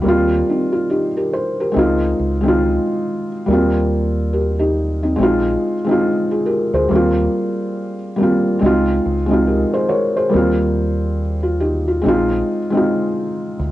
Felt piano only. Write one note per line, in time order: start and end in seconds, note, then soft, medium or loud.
0.02 1.07 G3 medium
0.02 1.08 A#3 medium
0.06 0.48 C4 medium
0.06 0.49 F4 loud
0.49 0.73 C4 soft
0.49 0.73 D#4 medium
0.73 0.89 F4 medium
0.90 1.15 D#4 medium
0.90 1.15 G4 medium
1.17 1.33 G4 medium
1.17 1.33 A#4 medium
1.33 1.58 C5 medium
1.60 2.01 G4 medium
1.60 2.00 A#4 medium
1.72 2.27 G#3 medium
1.72 2.28 C4 medium
1.76 2.29 D#4 medium
1.76 2.31 F4 loud
2.41 3.26 G#3 medium
2.41 3.28 C4 medium
2.45 3.29 D#4 medium
2.45 3.30 F4 medium
3.46 4.51 G3 medium
3.46 4.52 A#3 medium
3.50 4.35 C4 medium
3.50 4.36 F4 medium
4.33 4.58 G4 soft
4.33 4.58 A#4 medium
4.59 5.00 D#4 medium
4.59 5.00 G4 medium
5.03 5.17 C4 soft
5.03 5.19 D#4 medium
5.16 5.71 G#3 medium
5.16 5.72 C4 medium
5.21 5.73 D#4 medium
5.21 5.74 F4 loud
5.84 6.70 G#3 medium
5.84 6.71 C4 medium
5.89 6.72 D#4 medium
5.89 6.07 F4 medium
6.31 6.47 F4 medium
6.31 6.47 G#4 medium
6.46 6.72 G4 medium
6.46 6.71 A#4 medium
6.74 7.15 G#4 medium
6.74 7.15 C5 medium
6.89 7.93 G3 medium
6.89 7.95 A#3 medium
6.93 7.96 C4 medium
6.93 7.97 F4 medium
8.16 8.60 G3 medium
8.16 8.61 A#3 medium
8.20 8.60 C4 medium
8.20 8.64 F4 medium
8.59 9.14 G#3 medium
8.59 9.15 C4 medium
8.64 9.16 D#4 medium
8.64 9.17 F4 loud
9.26 10.12 G#3 medium
9.26 10.13 C4 medium
9.30 10.14 D#4 medium
9.30 10.15 F4 medium
9.47 9.72 G4 soft
9.47 9.72 A#4 medium
9.73 9.90 G#4 medium
9.73 9.90 C5 medium
9.89 10.14 A#4 medium
9.89 10.14 C#5 medium
10.16 10.57 G#4 medium
10.16 10.57 C5 medium
10.29 11.35 G3 medium
10.29 11.36 A#3 medium
10.34 11.37 C4 medium
10.34 11.20 F4 medium
11.43 11.60 F4 medium
11.60 11.86 D#4 medium
11.60 11.86 G4 medium
11.88 12.07 F4 medium
12.02 12.56 G#3 medium
12.02 12.57 C4 medium
12.06 12.59 D#4 medium
12.06 12.60 F4 loud
12.70 13.56 G#3 medium
12.70 13.57 C4 medium
12.75 13.58 D#4 medium
12.75 13.59 F4 medium